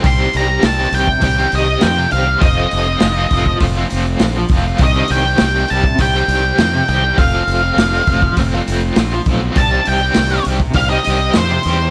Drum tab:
HH |o-o-o-o-o-o-o-o-|o-o-o-o-o-o-o-o-|o-o-o-o-o-o-o-o-|o-o-o-o-o-o-o-o-|
SD |----o-------o---|----o-------o---|----o-------o---|----o-------o---|
BD |o------oo-------|o-----ooo-----o-|o------oo-------|o-----ooo-----o-|

HH |o-o-o-o-o-o-o-o-|
SD |----o-------o---|
BD |o------oo-------|